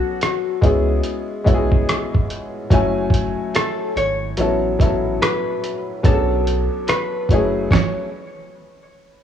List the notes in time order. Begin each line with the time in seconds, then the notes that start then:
Already playing: F#3 B3 C#4 D4 F#4 A4
0.21 cross-stick, closed hi-hat
0.61 C#2 G#3 B3 C#4 E4 G#4, kick, closed hi-hat
1.04 closed hi-hat
1.44 B1 G#3 B3 C#4 E4 F#4, kick, closed hi-hat
1.54 G#4
1.72 kick
1.89 cross-stick, closed hi-hat
2.14 kick
2.30 closed hi-hat
2.70 F#1 F#3 A3 C#4 E4 G#5, kick, closed hi-hat
3.10 kick, closed hi-hat
3.55 A4, cross-stick, closed hi-hat
3.96 G#1 C#5, closed hi-hat
4.37 A1 F#3 B3 C#4 E4 A4, closed hi-hat
4.79 A1 F#3 B3 C#4 E4 A4, kick, closed hi-hat
5.22 B4, cross-stick, closed hi-hat
5.63 closed hi-hat
6.03 B1 F#3 B3 C#4 D4 G#4 A4, kick, closed hi-hat
6.13 A4
6.47 closed hi-hat
6.88 B4, cross-stick, closed hi-hat
7.29 F#1 F#3 A3 C#4 E4, kick, closed hi-hat
7.33 G#4
7.71 C#5, kick, snare